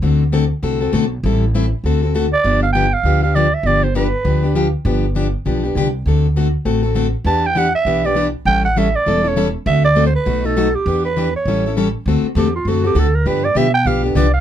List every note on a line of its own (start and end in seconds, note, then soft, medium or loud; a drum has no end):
0.02 0.51 D2 medium
0.02 0.23 D3 medium
0.02 0.23 A3 medium
0.02 0.23 C4 medium
0.02 0.23 F#4 medium
0.02 0.23 A4 medium
0.32 0.44 D3 medium
0.32 0.44 A3 medium
0.32 0.44 C4 medium
0.32 0.44 F#4 medium
0.32 0.44 A4 medium
0.63 0.89 C2 medium
0.63 0.80 D3 medium
0.63 0.80 A3 medium
0.63 0.81 C4 medium
0.63 0.81 F#4 medium
0.63 0.80 A4 medium
0.81 0.92 C4 soft
0.81 0.92 F#4 soft
0.81 0.93 A4 medium
0.93 1.19 B1 medium
0.93 1.04 D3 medium
0.93 1.04 A3 medium
0.93 1.04 C4 medium
0.93 1.04 F#4 medium
0.93 1.05 A4 loud
1.23 1.72 A1 medium
1.23 1.44 E3 medium
1.23 1.44 G3 medium
1.23 1.44 C4 medium
1.23 1.45 E4 medium
1.23 1.44 A4 medium
1.54 1.65 E3 medium
1.54 1.65 G3 medium
1.54 1.65 C4 medium
1.54 1.66 E4 medium
1.54 1.66 A4 medium
1.84 2.32 D2 medium
1.84 2.02 D3 medium
1.84 2.02 A3 medium
1.84 2.02 C4 medium
1.84 2.02 F#4 medium
1.84 2.02 A4 medium
2.03 2.14 C4 soft
2.03 2.14 F#4 soft
2.03 2.14 A4 medium
2.14 2.25 D3 medium
2.14 2.25 A3 medium
2.14 2.26 C4 medium
2.14 2.26 F#4 medium
2.14 2.26 A4 medium
2.33 2.61 D5 medium
2.44 2.93 G1 medium
2.44 2.64 D3 medium
2.44 2.64 F3 medium
2.44 2.64 B3 medium
2.44 2.65 D4 medium
2.44 2.65 G4 medium
2.63 2.72 F5 medium
2.73 2.86 D3 medium
2.73 2.86 F3 medium
2.73 2.86 B3 medium
2.73 2.86 D4 medium
2.73 2.86 G4 medium
2.73 2.95 G5 loud
2.93 3.22 F5 loud
3.03 3.52 D2 medium
3.03 3.22 D3 medium
3.03 3.22 F3 medium
3.03 3.22 B3 medium
3.03 3.22 D4 medium
3.03 3.22 G4 medium
3.23 3.35 B3 soft
3.23 3.35 D4 soft
3.23 3.35 G4 soft
3.23 3.37 F5 medium
3.35 3.46 D3 medium
3.35 3.46 F3 medium
3.35 3.47 B3 medium
3.35 3.47 D4 medium
3.35 3.47 G4 medium
3.35 3.55 D5 medium
3.54 3.68 E5 medium
3.63 4.12 G1 medium
3.63 3.85 D3 medium
3.63 3.85 F3 medium
3.63 3.86 B3 medium
3.63 3.86 D4 medium
3.63 3.86 G4 medium
3.63 3.85 D5 medium
3.83 3.96 C5 medium
3.95 4.06 D3 medium
3.95 4.06 F3 medium
3.95 4.06 B3 medium
3.95 4.06 D4 medium
3.95 4.06 G4 medium
3.95 4.70 B4 medium
4.24 4.73 D2 medium
4.24 4.42 D3 medium
4.24 4.42 F3 medium
4.24 4.43 B3 medium
4.24 4.43 D4 medium
4.24 4.42 G4 medium
4.43 4.55 B3 soft
4.43 4.55 D4 medium
4.43 4.55 G4 soft
4.55 4.66 D3 medium
4.55 4.66 F3 medium
4.55 4.67 B3 medium
4.55 4.67 D4 medium
4.55 4.67 G4 medium
4.85 5.33 G1 medium
4.85 5.05 D3 medium
4.85 5.05 F3 medium
4.85 5.05 B3 medium
4.85 5.05 D4 medium
4.85 5.06 G4 medium
5.15 5.26 D3 medium
5.15 5.27 F3 medium
5.15 5.27 B3 medium
5.15 5.27 D4 medium
5.15 5.27 G4 medium
5.45 5.71 B1 medium
5.45 5.63 D3 medium
5.45 5.63 F3 medium
5.45 5.63 B3 medium
5.45 5.63 D4 medium
5.45 5.62 G4 medium
5.63 5.75 B3 soft
5.63 5.76 D4 soft
5.63 5.75 G4 medium
5.75 6.01 C2 medium
5.75 5.87 D3 medium
5.75 5.87 F3 medium
5.75 5.87 B3 medium
5.75 5.88 D4 medium
5.75 5.87 G4 medium
6.06 6.54 D2 medium
6.06 6.26 D3 medium
6.06 6.26 A3 medium
6.06 6.26 C4 medium
6.06 6.26 F#4 medium
6.06 6.27 A4 medium
6.36 6.47 D3 medium
6.36 6.47 A3 medium
6.36 6.47 C4 medium
6.36 6.48 F#4 medium
6.36 6.47 A4 medium
6.65 7.14 A1 medium
6.65 6.83 D3 medium
6.65 6.83 A3 medium
6.65 6.83 C4 medium
6.65 6.83 F#4 medium
6.65 6.82 A4 medium
6.83 6.94 C4 soft
6.83 6.95 F#4 soft
6.83 6.95 A4 medium
6.95 7.06 D3 medium
6.95 7.07 A3 medium
6.95 7.07 C4 medium
6.95 7.07 F#4 medium
6.95 7.07 A4 medium
7.24 7.73 E2 medium
7.24 7.46 E3 medium
7.24 7.46 B3 medium
7.24 7.46 D4 medium
7.24 7.46 G4 medium
7.24 7.48 A5 loud
7.46 7.60 G5 loud
7.55 7.67 E3 medium
7.55 7.67 B3 medium
7.55 7.67 D4 medium
7.55 7.68 G4 medium
7.55 7.75 F#5 loud
7.75 8.07 E5 loud
7.85 8.34 B1 medium
7.85 8.03 E3 medium
7.85 8.04 B3 medium
7.85 8.04 D4 medium
7.85 8.03 G4 medium
8.05 8.15 B3 soft
8.05 8.15 D4 soft
8.05 8.16 G4 medium
8.05 8.26 D5 medium
8.15 8.26 E3 medium
8.15 8.27 B3 medium
8.15 8.27 D4 medium
8.15 8.27 G4 medium
8.45 8.94 A1 medium
8.45 8.66 E3 medium
8.45 8.66 G3 medium
8.45 8.66 C#4 medium
8.45 8.66 E4 medium
8.45 8.67 A4 medium
8.45 8.63 G5 loud
8.65 8.80 F#5 medium
8.76 8.87 E3 medium
8.76 8.87 G3 medium
8.76 8.88 C#4 medium
8.76 8.88 E4 medium
8.76 8.88 A4 medium
8.76 8.97 E5 medium
8.96 9.30 D5 medium
9.06 9.55 E1 medium
9.06 9.23 E3 medium
9.06 9.24 G3 medium
9.06 9.24 C#4 medium
9.06 9.23 E4 medium
9.06 9.22 A4 medium
9.23 9.36 C#4 soft
9.23 9.36 E4 soft
9.23 9.35 A4 medium
9.28 9.47 C#5 medium
9.36 9.47 E3 medium
9.36 9.47 G3 medium
9.36 9.47 C#4 medium
9.36 9.47 E4 medium
9.36 9.48 A4 medium
9.66 10.14 D2 medium
9.66 9.86 D3 medium
9.66 9.86 A3 medium
9.66 9.86 C4 medium
9.66 9.86 F#4 medium
9.66 9.86 A4 medium
9.66 9.83 E5 loud
9.85 10.05 D5 medium
9.96 10.07 D3 medium
9.96 10.07 A3 medium
9.96 10.07 C4 medium
9.96 10.07 F#4 medium
9.96 10.07 A4 medium
10.06 10.15 C5 medium
10.15 10.47 B4 medium
10.26 10.74 B1 medium
10.26 10.43 B2 medium
10.26 10.43 F#3 medium
10.26 10.43 A3 medium
10.26 10.44 D#4 medium
10.26 10.43 F#4 medium
10.44 10.56 A3 soft
10.44 10.56 D#4 soft
10.44 10.56 F#4 medium
10.44 10.77 A4 medium
10.56 10.67 B2 medium
10.56 10.67 F#3 medium
10.56 10.67 A3 medium
10.56 10.67 D#4 medium
10.56 10.68 F#4 loud
10.75 11.04 G4 medium
10.86 11.34 E2 medium
10.86 11.06 E3 medium
10.86 11.06 B3 medium
10.86 11.06 D4 medium
10.86 11.07 G4 medium
11.05 11.32 B4 medium
11.17 11.27 E3 medium
11.17 11.27 B3 medium
11.17 11.28 D4 medium
11.17 11.28 G4 medium
11.36 11.74 C#5 medium
11.45 11.94 A1 medium
11.45 11.64 E3 medium
11.45 11.64 G3 medium
11.45 11.64 C#4 medium
11.45 11.64 E4 medium
11.45 11.64 A4 medium
11.66 11.76 C#4 soft
11.66 11.76 E4 soft
11.66 11.77 A4 medium
11.77 11.87 E3 medium
11.77 11.87 G3 medium
11.77 11.87 C#4 medium
11.77 11.88 E4 medium
11.77 11.88 A4 medium
12.06 12.22 D2 medium
12.06 12.26 D3 medium
12.06 12.26 A3 medium
12.06 12.26 C4 medium
12.06 12.26 F#4 medium
12.06 12.26 A4 medium
12.22 muted upright bass stroke soft
12.35 12.65 E2 medium
12.35 12.47 D3 medium
12.35 12.47 A3 medium
12.35 12.47 C4 medium
12.35 12.47 F#4 medium
12.35 12.53 G4 medium
12.35 12.47 A4 medium
12.55 12.70 F4 medium
12.65 12.94 F#2 medium
12.65 12.83 D3 medium
12.65 12.84 A3 medium
12.65 12.84 C4 medium
12.65 12.83 F#4 medium
12.65 12.85 F#4 medium
12.65 12.83 A4 medium
12.84 12.94 C4 soft
12.84 12.95 F#4 soft
12.84 13.01 G4 medium
12.84 12.95 A4 soft
12.95 13.24 D2 medium
12.95 13.06 D3 medium
12.95 13.06 A3 medium
12.95 13.06 C4 medium
12.95 13.06 F#4 loud
12.95 13.07 A4 medium
12.99 13.17 A4 medium
13.15 13.29 A#4 medium
13.26 13.55 G2 medium
13.26 13.45 D3 medium
13.26 13.45 F3 medium
13.26 13.45 B3 medium
13.26 13.45 D4 medium
13.26 13.46 G4 medium
13.26 13.46 B4 medium
13.45 13.59 D5 medium
13.55 13.84 B2 medium
13.55 13.66 D3 medium
13.55 13.67 F3 medium
13.55 13.66 B3 medium
13.55 13.66 D4 medium
13.55 13.67 G4 loud
13.55 13.73 E5 medium
13.74 13.88 G5 loud
13.85 14.14 B1 medium
13.85 14.02 D3 medium
13.85 14.03 F3 medium
13.85 14.03 B3 medium
13.85 14.03 D4 medium
13.85 14.02 G4 medium
13.85 14.04 F5 medium
14.03 14.15 B3 soft
14.03 14.16 D4 soft
14.03 14.15 G4 medium
14.03 14.18 A4 medium
14.15 14.40 C2 medium
14.15 14.26 D3 medium
14.15 14.26 F3 medium
14.15 14.26 B3 medium
14.15 14.27 D4 loud
14.15 14.27 G4 loud
14.15 14.33 D5 medium
14.33 14.40 F5 medium